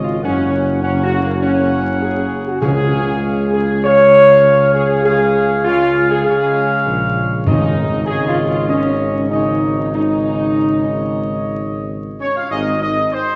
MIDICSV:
0, 0, Header, 1, 6, 480
1, 0, Start_track
1, 0, Key_signature, -5, "major"
1, 0, Tempo, 603622
1, 186, Time_signature, 4, 2, 24, 8
1, 6907, Tempo, 634921
1, 10438, End_track
2, 0, Start_track
2, 0, Title_t, "Trumpet section"
2, 0, Program_c, 0, 61
2, 0, Note_on_c, 0, 73, 75
2, 0, Note_on_c, 0, 75, 78
2, 153, Note_off_c, 0, 75, 0
2, 154, Note_off_c, 0, 73, 0
2, 185, Note_on_c, 0, 78, 70
2, 188, Note_on_c, 0, 73, 68
2, 630, Note_off_c, 0, 78, 0
2, 631, Note_off_c, 0, 73, 0
2, 659, Note_on_c, 0, 73, 82
2, 659, Note_on_c, 0, 78, 73
2, 1106, Note_off_c, 0, 73, 0
2, 1106, Note_off_c, 0, 78, 0
2, 1136, Note_on_c, 0, 73, 81
2, 1136, Note_on_c, 0, 78, 79
2, 2058, Note_off_c, 0, 73, 0
2, 2058, Note_off_c, 0, 78, 0
2, 2080, Note_on_c, 0, 73, 76
2, 2080, Note_on_c, 0, 77, 71
2, 2926, Note_off_c, 0, 73, 0
2, 2926, Note_off_c, 0, 77, 0
2, 3061, Note_on_c, 0, 73, 86
2, 3062, Note_on_c, 0, 77, 86
2, 3988, Note_off_c, 0, 73, 0
2, 3989, Note_off_c, 0, 77, 0
2, 4019, Note_on_c, 0, 73, 76
2, 4020, Note_on_c, 0, 77, 83
2, 4465, Note_off_c, 0, 73, 0
2, 4466, Note_off_c, 0, 77, 0
2, 4493, Note_on_c, 0, 73, 91
2, 4495, Note_on_c, 0, 77, 88
2, 4939, Note_off_c, 0, 73, 0
2, 4940, Note_off_c, 0, 77, 0
2, 4974, Note_on_c, 0, 73, 86
2, 4974, Note_on_c, 0, 77, 93
2, 5907, Note_off_c, 0, 73, 0
2, 5907, Note_off_c, 0, 77, 0
2, 5941, Note_on_c, 0, 73, 74
2, 5944, Note_on_c, 0, 75, 77
2, 6389, Note_off_c, 0, 73, 0
2, 6390, Note_off_c, 0, 75, 0
2, 6418, Note_on_c, 0, 75, 88
2, 6421, Note_on_c, 0, 73, 76
2, 6872, Note_off_c, 0, 75, 0
2, 6873, Note_off_c, 0, 73, 0
2, 6908, Note_on_c, 0, 75, 77
2, 6909, Note_on_c, 0, 73, 71
2, 7348, Note_off_c, 0, 75, 0
2, 7349, Note_off_c, 0, 73, 0
2, 7384, Note_on_c, 0, 73, 81
2, 7387, Note_on_c, 0, 75, 80
2, 7832, Note_off_c, 0, 73, 0
2, 7833, Note_off_c, 0, 75, 0
2, 7865, Note_on_c, 0, 73, 70
2, 7866, Note_on_c, 0, 75, 68
2, 9438, Note_off_c, 0, 73, 0
2, 9438, Note_off_c, 0, 75, 0
2, 9566, Note_on_c, 0, 73, 101
2, 9677, Note_off_c, 0, 73, 0
2, 9688, Note_on_c, 0, 77, 88
2, 9796, Note_off_c, 0, 77, 0
2, 9800, Note_on_c, 0, 75, 91
2, 10018, Note_off_c, 0, 75, 0
2, 10032, Note_on_c, 0, 75, 95
2, 10251, Note_off_c, 0, 75, 0
2, 10264, Note_on_c, 0, 72, 94
2, 10438, Note_off_c, 0, 72, 0
2, 10438, End_track
3, 0, Start_track
3, 0, Title_t, "French horn section"
3, 0, Program_c, 1, 60
3, 26, Note_on_c, 1, 65, 90
3, 174, Note_off_c, 1, 65, 0
3, 180, Note_on_c, 1, 61, 107
3, 627, Note_off_c, 1, 61, 0
3, 654, Note_on_c, 1, 61, 106
3, 806, Note_off_c, 1, 61, 0
3, 820, Note_on_c, 1, 66, 113
3, 968, Note_off_c, 1, 66, 0
3, 977, Note_on_c, 1, 58, 98
3, 1049, Note_off_c, 1, 58, 0
3, 1125, Note_on_c, 1, 61, 103
3, 1576, Note_off_c, 1, 61, 0
3, 1607, Note_on_c, 1, 68, 101
3, 1943, Note_off_c, 1, 68, 0
3, 1968, Note_on_c, 1, 66, 90
3, 2081, Note_on_c, 1, 68, 124
3, 2089, Note_off_c, 1, 66, 0
3, 2780, Note_off_c, 1, 68, 0
3, 2806, Note_on_c, 1, 68, 109
3, 3042, Note_off_c, 1, 68, 0
3, 3053, Note_on_c, 1, 73, 127
3, 3744, Note_off_c, 1, 73, 0
3, 3766, Note_on_c, 1, 68, 115
3, 3997, Note_off_c, 1, 68, 0
3, 4013, Note_on_c, 1, 68, 124
3, 4462, Note_off_c, 1, 68, 0
3, 4490, Note_on_c, 1, 65, 122
3, 4824, Note_off_c, 1, 65, 0
3, 4855, Note_on_c, 1, 68, 118
3, 4954, Note_off_c, 1, 68, 0
3, 4964, Note_on_c, 1, 68, 115
3, 5417, Note_off_c, 1, 68, 0
3, 5933, Note_on_c, 1, 63, 118
3, 6384, Note_off_c, 1, 63, 0
3, 6410, Note_on_c, 1, 68, 119
3, 6563, Note_off_c, 1, 68, 0
3, 6581, Note_on_c, 1, 65, 114
3, 6654, Note_off_c, 1, 65, 0
3, 6743, Note_on_c, 1, 65, 101
3, 6894, Note_off_c, 1, 65, 0
3, 6900, Note_on_c, 1, 61, 107
3, 7344, Note_off_c, 1, 61, 0
3, 7368, Note_on_c, 1, 63, 90
3, 7706, Note_off_c, 1, 63, 0
3, 7737, Note_on_c, 1, 63, 96
3, 7792, Note_off_c, 1, 63, 0
3, 7855, Note_on_c, 1, 63, 109
3, 9283, Note_off_c, 1, 63, 0
3, 9558, Note_on_c, 1, 61, 77
3, 9614, Note_off_c, 1, 61, 0
3, 9688, Note_on_c, 1, 65, 88
3, 9740, Note_off_c, 1, 65, 0
3, 9801, Note_on_c, 1, 63, 93
3, 10019, Note_off_c, 1, 63, 0
3, 10035, Note_on_c, 1, 63, 95
3, 10140, Note_off_c, 1, 63, 0
3, 10269, Note_on_c, 1, 60, 88
3, 10374, Note_off_c, 1, 60, 0
3, 10438, End_track
4, 0, Start_track
4, 0, Title_t, "Trombone section"
4, 0, Program_c, 2, 61
4, 0, Note_on_c, 2, 49, 76
4, 0, Note_on_c, 2, 56, 75
4, 152, Note_off_c, 2, 56, 0
4, 153, Note_off_c, 2, 49, 0
4, 182, Note_on_c, 2, 58, 80
4, 183, Note_on_c, 2, 49, 75
4, 629, Note_off_c, 2, 49, 0
4, 652, Note_off_c, 2, 58, 0
4, 662, Note_on_c, 2, 58, 78
4, 663, Note_on_c, 2, 49, 72
4, 1107, Note_off_c, 2, 58, 0
4, 1108, Note_off_c, 2, 49, 0
4, 1135, Note_on_c, 2, 49, 75
4, 1138, Note_on_c, 2, 58, 81
4, 2058, Note_off_c, 2, 49, 0
4, 2059, Note_off_c, 2, 58, 0
4, 2089, Note_on_c, 2, 49, 84
4, 2091, Note_on_c, 2, 56, 81
4, 3032, Note_off_c, 2, 49, 0
4, 3033, Note_off_c, 2, 56, 0
4, 3062, Note_on_c, 2, 49, 88
4, 3062, Note_on_c, 2, 56, 85
4, 3882, Note_off_c, 2, 49, 0
4, 3882, Note_off_c, 2, 56, 0
4, 4017, Note_on_c, 2, 56, 87
4, 4019, Note_on_c, 2, 49, 83
4, 4464, Note_off_c, 2, 56, 0
4, 4465, Note_off_c, 2, 49, 0
4, 4497, Note_on_c, 2, 49, 87
4, 4499, Note_on_c, 2, 56, 93
4, 4941, Note_off_c, 2, 49, 0
4, 4941, Note_off_c, 2, 56, 0
4, 4968, Note_on_c, 2, 56, 91
4, 4970, Note_on_c, 2, 49, 92
4, 5904, Note_off_c, 2, 56, 0
4, 5905, Note_off_c, 2, 49, 0
4, 5937, Note_on_c, 2, 56, 81
4, 5942, Note_on_c, 2, 49, 80
4, 6386, Note_off_c, 2, 56, 0
4, 6389, Note_off_c, 2, 49, 0
4, 6420, Note_on_c, 2, 56, 79
4, 6421, Note_on_c, 2, 49, 80
4, 6873, Note_off_c, 2, 49, 0
4, 6873, Note_off_c, 2, 56, 0
4, 6907, Note_on_c, 2, 49, 78
4, 6909, Note_on_c, 2, 56, 78
4, 7348, Note_off_c, 2, 49, 0
4, 7348, Note_off_c, 2, 56, 0
4, 7379, Note_on_c, 2, 56, 76
4, 7381, Note_on_c, 2, 49, 81
4, 7830, Note_off_c, 2, 56, 0
4, 7831, Note_off_c, 2, 49, 0
4, 7865, Note_on_c, 2, 56, 73
4, 7867, Note_on_c, 2, 49, 82
4, 9533, Note_off_c, 2, 56, 0
4, 9534, Note_off_c, 2, 49, 0
4, 9799, Note_on_c, 2, 56, 78
4, 9805, Note_on_c, 2, 48, 71
4, 9963, Note_off_c, 2, 56, 0
4, 9967, Note_off_c, 2, 48, 0
4, 10438, End_track
5, 0, Start_track
5, 0, Title_t, "Timpani"
5, 0, Program_c, 3, 47
5, 2084, Note_on_c, 3, 49, 101
5, 2781, Note_off_c, 3, 49, 0
5, 5936, Note_on_c, 3, 44, 106
5, 6627, Note_off_c, 3, 44, 0
5, 10438, End_track
6, 0, Start_track
6, 0, Title_t, "Tuba"
6, 0, Program_c, 4, 58
6, 0, Note_on_c, 4, 32, 75
6, 152, Note_off_c, 4, 32, 0
6, 180, Note_on_c, 4, 30, 81
6, 1951, Note_off_c, 4, 30, 0
6, 2087, Note_on_c, 4, 37, 84
6, 5199, Note_off_c, 4, 37, 0
6, 5454, Note_on_c, 4, 34, 78
6, 5906, Note_off_c, 4, 34, 0
6, 5940, Note_on_c, 4, 32, 86
6, 9530, Note_off_c, 4, 32, 0
6, 9797, Note_on_c, 4, 32, 82
6, 10189, Note_off_c, 4, 32, 0
6, 10438, End_track
0, 0, End_of_file